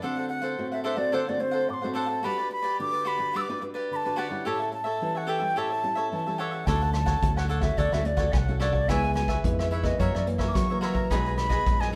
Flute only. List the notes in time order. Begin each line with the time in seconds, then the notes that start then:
0.02 F#5
0.29 F#5
0.72 E5
0.84 E5
0.97 D5
1.14 C5
1.29 D5
1.41 C5
1.70 D6
1.74 C6
1.95 A5
2.24 B5
2.52 B5
2.81 D6
3.07 B5
3.37 E6
3.41 D6
3.93 A5 B5
4.18 F#5
4.47 A5
4.73 A5
5.17 F#5
5.29 G5
5.58 A5
6.13 A5
6.39 F#5
6.67 A5
6.94 A5
7.38 F#5
7.49 F#5
7.62 E5
7.78 D5
7.93 E5
8.06 D5
8.33 G#5
8.37 F#5
8.60 D5
8.89 G#5
9.15 G#5
9.59 E5
9.71 E5
9.83 D#5
10.00 C#5
10.15 D5
10.48 D6
10.54 C#6
10.82 C6
10.86 A#5
11.11 B5
11.38 B5
11.81 G#5